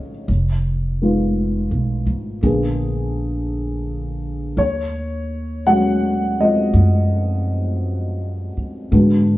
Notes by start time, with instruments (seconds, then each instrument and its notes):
Already playing: upright piano C#3 G#3 C#4 D#4 F4 C#5 D#5
0.28 upright bass F1
1.02 upright piano D#3 G#3 B3 F4
1.71 upright bass B1
2.07 upright bass G#1
2.42 upright bass A#1, upright piano D3 A#3 B3 G#4
4.57 upright bass D#2, upright piano C#5
5.66 upright piano F#3 G#3 C#4 F#4 F#5
6.40 upright piano G#3 C4 F4 D#5
6.73 upright bass F#2
8.57 muted upright bass stroke
8.91 upright bass G#2, upright piano D3 G#3 B3 F#4